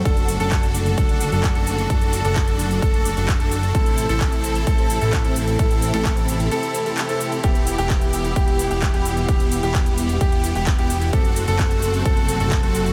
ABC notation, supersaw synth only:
X:1
M:4/4
L:1/16
Q:1/4=130
K:Em
V:1 name="Supersaw synth"
[DFA]3 [DFA]4- [DFA] [DFA]3 [DFA]2 [DFA]3 | [DFA]3 [DFA]4- [DFA] [DFA]3 [DFA]2 [DFA]3 | [CEA]3 [CEA]4- [CEA] [CEA]3 [CEA]2 [CEA]3 | [CEA]3 [CEA]4- [CEA] [CEA]3 [CEA]2 [CEA]3 |
[B,EG]3 [B,EG]4- [B,EG] [B,EG]3 [B,EG]2 [B,EG]3 | [B,EG]3 [B,EG]4- [B,EG] [B,EG]3 [B,EG]2 [B,EG]3 | [CFA]3 [CFA]4- [CFA] [CFA]3 [CFA]2 [CFA]3 |]